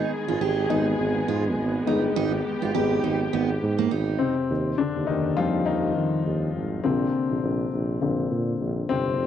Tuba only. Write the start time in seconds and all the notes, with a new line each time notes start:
0.27 G#1
0.40 G#1
0.69 G#1
0.98 G#1
1.28 G#2
1.57 G#1
1.87 G1
2.16 G#1
2.62 G#1
2.75 G#1
3.03 G#1
3.33 G#1
3.62 G#2
3.91 G#1
4.50 D#2
4.96 D#2
5.09 D#2
5.38 D#2
5.67 D#2
5.96 D#3
6.26 D#2
6.55 G#1
6.84 A#1
7.30 A#1
7.43 A#1
7.73 A#1
8.02 A#1
8.31 A#2
8.60 A#1
8.89 G1
9.19 F1